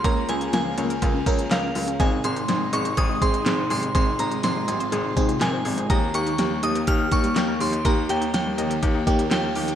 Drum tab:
HH |x-xxx-xxx-xxx-ox|x-xxx-xxx-xxx-ox|x-xxx-xxx-xxx-ox|x-xxx-xxx-xxx-ox|
CP |------------x---|------------x---|------------x---|------------x---|
SD |----o-------o---|----o-------o---|----o-------o---|----o-------o---|
BD |o-------o-o-----|o-------o-o-----|o---------o-----|o-------o-o-----|

HH |x-xxx-xxx-xxx-ox|
CP |------------x---|
SD |----o-------o---|
BD |o-------o-o-----|